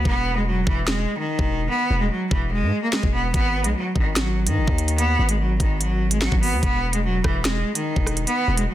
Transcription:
0.05 E1 B3, kick
0.36 G#3
0.47 F#3
0.67 E1 E3, kick
0.87 G#3, snare
1.18 D#3
1.39 E1, kick
1.70 B3
1.90 E1
2.00 G#3
2.11 F#3
2.31 E1 E3, kick
2.52 G#3
2.62 G#2
2.83 A#3
2.93 G#3, snare
3.03 E1, kick
3.14 B3
3.34 G#1 B3, kick, closed hi-hat
3.64 B1 G#3, closed hi-hat
3.75 F#3
3.96 G#1 D#3, kick
4.16 F#3, snare, closed hi-hat
4.47 G#2 D#3, closed hi-hat
4.57 G#1
4.68 D#2, kick
4.78 closed hi-hat
4.88 closed hi-hat
4.98 B3, closed hi-hat
5.19 G#1
5.29 G#3, closed hi-hat
5.40 F#3
5.60 G#1 D#3, kick, closed hi-hat
5.81 F#3, closed hi-hat
6.11 G#3, closed hi-hat
6.22 F#3, snare
6.32 G#1, kick
6.42 B3, open hi-hat
6.53 D#2
6.63 E1 B3, kick, closed hi-hat
6.93 G#3, closed hi-hat
7.04 F#3
7.24 E1 E3, kick, cross-stick
7.45 G#3, snare, closed hi-hat
7.75 D#3, closed hi-hat
7.96 E1, kick
8.07 cross-stick, closed hi-hat
8.17 closed hi-hat
8.27 B3, closed hi-hat
8.48 E1
8.57 G#3, closed hi-hat
8.68 F#3

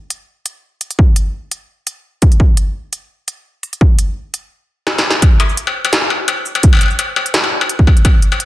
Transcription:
0.10 closed hi-hat
0.46 closed hi-hat
0.81 closed hi-hat
0.91 closed hi-hat
0.99 kick
1.16 closed hi-hat
1.52 closed hi-hat
1.87 closed hi-hat
2.22 kick, closed hi-hat
2.32 closed hi-hat
2.40 kick
2.57 closed hi-hat
2.93 closed hi-hat
3.28 closed hi-hat
3.63 closed hi-hat
3.73 closed hi-hat
3.81 kick
3.99 closed hi-hat
4.34 closed hi-hat
4.87 snare
4.98 snare
5.10 snare
5.22 kick, closed hi-hat, struck metal
5.40 closed hi-hat, struck metal
5.49 shaker
5.57 closed hi-hat
5.67 struck metal
5.85 closed hi-hat, struck metal
5.93 snare, closed hi-hat
6.10 struck metal
6.28 closed hi-hat, struck metal
6.46 shaker
6.55 closed hi-hat, struck metal
6.63 kick, closed hi-hat
6.73 struck metal
6.75 struck metal
6.77 struck metal
6.79 closed hi-hat, struck metal
6.81 struck metal
6.83 struck metal
6.86 struck metal
6.88 struck metal, shaker
6.99 closed hi-hat, struck metal
7.16 struck metal
7.26 closed hi-hat
7.34 snare, closed hi-hat
7.44 struck metal
7.61 struck metal
7.70 closed hi-hat
7.79 kick
7.87 kick, struck metal
7.97 closed hi-hat
8.05 kick, closed hi-hat, struck metal
8.22 closed hi-hat
8.32 struck metal, shaker
8.40 closed hi-hat

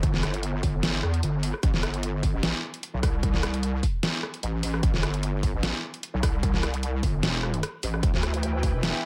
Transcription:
Already playing: G1
0.03 kick, closed hi-hat
0.14 snare
0.23 G1, cross-stick, closed hi-hat
0.34 closed hi-hat
0.43 closed hi-hat
0.63 G1, kick, open hi-hat
0.83 snare, closed hi-hat
1.03 E2, cross-stick
1.14 closed hi-hat
1.23 G1, closed hi-hat
1.43 open hi-hat
1.54 cross-stick
1.63 A1, kick, closed hi-hat
1.74 G1, snare
1.83 cross-stick, closed hi-hat
1.94 closed hi-hat
2.03 closed hi-hat
2.23 kick, open hi-hat
2.34 A1
2.43 snare, closed hi-hat
2.74 closed hi-hat
2.83 closed hi-hat
2.94 B1
3.03 C2, kick, cross-stick, open hi-hat
3.23 kick, closed hi-hat
3.34 snare
3.43 C2, cross-stick, closed hi-hat
3.54 closed hi-hat
3.63 closed hi-hat
3.83 kick, open hi-hat
4.03 snare, closed hi-hat
4.23 cross-stick
4.34 closed hi-hat
4.43 A1, closed hi-hat
4.63 A1, open hi-hat
4.74 cross-stick
4.83 A1, kick, closed hi-hat
4.94 G1, snare
5.03 cross-stick, closed hi-hat
5.14 closed hi-hat
5.23 closed hi-hat
5.43 kick, open hi-hat
5.54 A1
5.63 snare, closed hi-hat
5.94 closed hi-hat
6.03 closed hi-hat
6.14 B1
6.23 C2, kick, cross-stick, open hi-hat
6.43 kick, closed hi-hat
6.54 snare
6.63 C2, cross-stick, closed hi-hat
6.74 closed hi-hat
6.83 closed hi-hat
7.03 G1, kick, open hi-hat
7.23 E1, snare, closed hi-hat
7.43 cross-stick
7.54 closed hi-hat
7.63 cross-stick, closed hi-hat
7.83 A1, open hi-hat
7.94 cross-stick
8.03 E1 E3 E4 B4 G5, kick, closed hi-hat
8.14 D2, snare
8.23 cross-stick, closed hi-hat
8.34 closed hi-hat
8.43 closed hi-hat
8.63 kick, open hi-hat
8.74 E1
8.83 snare, closed hi-hat

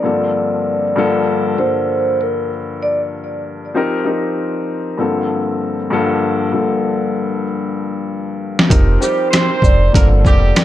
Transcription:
Already playing: D5
0.03 G2 D3 F3 A#3 C4 A4
0.96 G2 D3 F3 A#3 A4
1.57 G2 D3 F3 A#3 A4 C5
2.21 A#4
2.83 D5
3.74 F3 C4 D#4 G4 A#4
4.04 F3 C4 D#4 G4 A#4
4.97 G2 D3 F3 A#3 C4 A4
5.90 G2 D3 F3 A#3 A4
6.52 G2 D3 F3 A#3 A4
8.59 snare
8.69 F1 F3 C4 D#4 G4 A#4, kick, closed hi-hat
8.99 F3 G3 C4 D#4 G4 A#4 C5, shaker
9.31 C4 C5, cross-stick, snare, closed hi-hat
9.62 F1 D5, kick, shaker
9.92 G1 G2 D3 F3 A#3 C4 A4 A#4, kick, closed hi-hat
10.25 F1 G3 G4, kick, shaker
10.56 cross-stick, snare, closed hi-hat

